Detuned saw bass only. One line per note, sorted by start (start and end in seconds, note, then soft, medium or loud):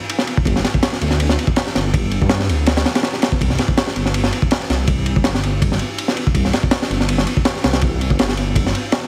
0.45 0.62 G1 loud
1.01 1.37 D2 loud
1.75 2.20 G1 medium
2.22 2.50 G2 medium
2.49 2.84 D2 loud
3.41 3.57 C2 loud
3.96 4.31 G1 loud
4.69 5.14 C2 medium
5.16 5.42 G1 medium
5.43 5.78 G1 loud
6.35 6.51 C2 loud
6.90 7.25 G1 loud
7.64 8.09 C2 medium
8.10 8.36 G1 medium
8.37 8.73 G1 loud